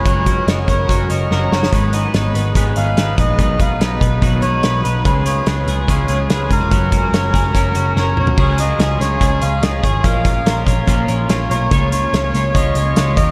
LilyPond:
<<
  \new Staff \with { instrumentName = "Melodica" } { \time 4/4 \key cis \mixolydian \tempo 4 = 144 cis''4 \tuplet 3/2 { dis''8 dis''16 cis''8.~ } cis''8 dis''4 cis''8 | cis''8 dis''8 cis''8 r4 eis''4 dis''8 | dis''8 eis''8 dis''8 r4 cis''4 b'8 | b'8 cis''8 b'4 cis''4 b'8 ais'8~ |
ais'2. cis''8 cis''8 | cis''8 dis''4 cis''4 eis''8 dis''8 cis''8 | eis''4. r4. cis''8 cis''8~ | cis''8 cis''4. dis''4. dis''8 | }
  \new Staff \with { instrumentName = "Clean electric guitar" } { \time 4/4 \key cis \mixolydian fis8 fis'8 cis'8 ais'8 cis'8 fis'8 ais'8 fis'8 | gis,8 dis'8 b8 b'8 gis8 dis'8 b'8 dis'8 | b,8 dis'8 b8 b'8 fis8 dis'8 b'8 dis'8 | cis8 eis'8 cis'8 gis'8 gis8 eis'8 gis'8 dis'16 eis'16 |
fis8 fis'8 cis'8 gis'16 ais'16 cis'8 fis'8 ais'8 fis'8 | <cis gis'>8 eis'8 gis'8 cis'8 gis'8 cis'8 eis'8 gis'8 | <ais, ais'>8 eis'8 ais'8 cis'8 ais'8 cis'8 eis'8 ais'8 | <cis cis''>8 eis'8 cis''8 cis'8 cis''8 cis'8 eis'8 dis8 | }
  \new Staff \with { instrumentName = "Clean electric guitar" } { \time 4/4 \key cis \mixolydian <fis cis' fis' ais'>8 <cis' fis' ais'>8 <fis cis' fis' ais'>8 <cis' fis' ais'>8 <fis cis' fis' ais'>8 <cis' fis' ais'>8 <fis cis' fis' ais'>8 <cis' fis' ais'>8 | <gis, dis gis b dis' b'>8 <gis b dis' b'>8 <gis b dis' b'>8 <gis b dis' b'>8 <gis, dis gis b dis' b'>8 <gis b dis' b'>8 <gis b dis' b'>8 <gis b dis' b'>8 | <b, dis fis b dis' b'>8 <fis b dis' b'>8 <fis b dis' b'>8 <fis b dis' b'>8 <b, dis fis b dis' b'>8 <fis b dis' b'>8 <fis b dis' b'>8 <fis b dis' b'>8 | <cis gis cis' eis' gis'>8 <cis' eis' gis'>8 <gis cis' eis' gis'>8 <cis' eis' gis'>8 <cis gis cis' eis' gis'>8 <cis' eis' gis'>8 <gis cis' eis' gis'>8 <cis' eis' gis'>8 |
<fis cis' fis' ais'>8 <cis' fis' ais'>8 <fis cis' fis' ais'>8 <cis' fis' ais'>8 <fis cis' fis' ais'>8 <cis' fis' ais'>8 <fis cis' fis' ais'>8 <cis' fis' ais'>8 | <cis gis cis' eis' gis'>8 <cis' eis' gis'>8 <gis cis' eis' gis'>8 <cis' eis' gis'>8 <cis gis cis' eis' gis'>8 <cis' eis' gis'>8 <gis cis' eis' gis'>8 <cis' eis' gis'>8 | <ais, eis ais cis' eis' ais'>8 <ais cis' eis' ais'>8 <ais cis' eis' ais'>8 <ais cis' eis' ais'>8 <ais, eis ais cis' eis' ais'>8 <ais cis' eis' ais'>8 <ais cis' eis' ais'>8 <ais cis' eis' ais'>8 | <cis gis cis' eis' cis''>8 <cis' eis' cis''>8 <gis cis' eis' cis''>8 <cis' eis' cis''>8 <cis gis cis' eis' cis''>8 <cis' eis' cis''>8 <gis cis' eis' cis''>8 <dis' g' ais'>8 | }
  \new Staff \with { instrumentName = "Picked electric bass" } { \clef bass \time 4/4 \key cis \mixolydian fis,,4 fis,,8 fis,,8 fis,,8 fis,,8 fis,,8 fis,,8 | gis,,4 gis,,8 gis,,8 gis,,8 gis,,8 gis,,8 ais,,8 | b,,4 b,,8 b,,8 b,,8 b,,8 b,,8 b,,8 | cis,4 cis,8 cis,8 cis,8 cis,8 cis,8 eis,,8 |
fis,,4 fis,,8 fis,,8 fis,,8 fis,,8 fis,,8 b,,8 | cis,4 cis,8 cis,8 cis,8 cis,8 cis,8 gis,,8 | ais,,4 ais,,8 ais,,8 ais,,8 ais,,8 ais,,8 b,,8 | cis,4 cis,8 cis,8 cis,8 cis,8 cis,8 dis,8 | }
  \new DrumStaff \with { instrumentName = "Drums" } \drummode { \time 4/4 <hh bd>8 <hh bd>8 <hh sn>8 <hh bd>8 <hh bd>8 hh8 sn8 sn16 sn16 | <hh bd>8 hh8 <hh sn>8 hh8 <hh bd>8 hh8 <hh sn>8 <hh bd>8 | <hh bd>8 <hh bd>8 <hh sn>8 <hh bd>8 <hh bd>8 hh8 <hh sn>8 hh8 | <hh bd>8 hh8 <hh sn>8 hh8 <hh bd>8 hh8 <hh sn>8 <hh bd>8 |
<hh bd>8 <hh bd>8 <hh sn>8 <hh bd sn>8 <hh bd>8 hh8 sn8 toml16 tomfh16 | <cymc bd>8 hh8 <hh sn>8 <hh sn>8 <hh bd>8 hh8 <hh sn>8 <hh bd>8 | <hh bd>8 <hh bd>8 <hh sn>8 <hh bd>8 <hh bd>8 hh8 <hh sn>8 hh8 | <hh bd>8 hh8 <hh sn>8 <hh sn>8 <hh bd>8 hh8 <hh sn>8 <hh bd>8 | }
>>